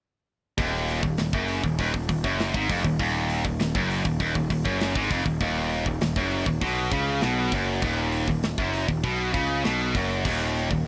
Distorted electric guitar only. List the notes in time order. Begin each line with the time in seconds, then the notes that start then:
0.59 D#2
1.04 D#2
1.19 D#2
1.34 F#2
1.64 D#2
1.80 D#2
1.94 D#2
2.09 D#2
2.24 F#2
2.54 G#2
2.70 F2
2.85 D#2
3.00 D#2
3.45 D#2
3.60 D#2
3.75 F#2
4.05 D#2
4.20 D#2
4.35 D#2
4.50 D#2
4.65 F#2
4.96 G#2
5.11 F2
5.26 D#2
5.41 D#2
5.87 D#2
6.02 D#2
6.17 F#2
6.48 D#2
6.62 B2
6.93 C#3
7.23 B2
7.53 F#2
7.84 D#2
8.29 D#2
8.44 D#2
8.58 F#2
8.89 D#2
9.04 B2
9.33 C#3
9.65 B2
9.95 F#2
10.26 D#2
10.71 D#2